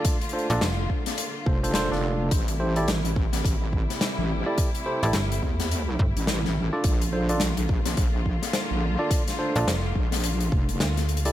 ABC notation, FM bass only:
X:1
M:4/4
L:1/16
Q:"Swing 16ths" 1/4=106
K:Bblyd
V:1 name="FM bass" clef=bass
z3 B,,, F,,,2 z8 z2 | z16 | z3 A,,, G,,,2 z4 G,,, z4 z | z16 |
z3 B,,, F,,,2 z6 D,,4 |]